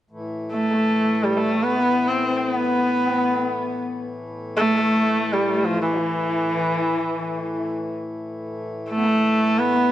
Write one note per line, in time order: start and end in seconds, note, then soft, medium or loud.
0.11 9.92 A2 soft
0.11 9.92 E3 soft
0.53 1.25 A3 medium
0.71 1.40 A3 soft
1.23 1.39 G3 medium
1.37 1.57 G3 soft
1.37 1.65 A3 medium
1.55 1.81 A3 soft
1.63 2.09 B3 medium
1.80 2.26 B3 soft
2.08 2.36 C4 medium
2.25 2.56 C4 medium
2.36 2.48 C4 medium
2.48 3.81 B3 medium
2.54 4.00 B3 medium
4.57 5.34 A3 medium
4.73 6.01 A3 medium
5.33 5.66 G3 medium
5.64 5.81 F3 medium
5.82 7.72 E3 medium
6.00 7.94 E3 soft
8.90 9.60 A3 medium
8.97 9.08 B3 soft
9.06 9.76 A3 soft
9.59 9.92 B3 medium
9.74 9.92 B3 soft